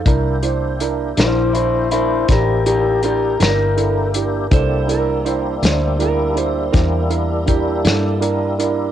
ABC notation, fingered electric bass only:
X:1
M:12/8
L:1/8
Q:3/8=54
K:Cmix
V:1 name="Fingered electric bass" clef=bass
C,,3 B,,,3 A,,,3 G,,,3 | C,,3 D,,3 E,,3 G,,3 |]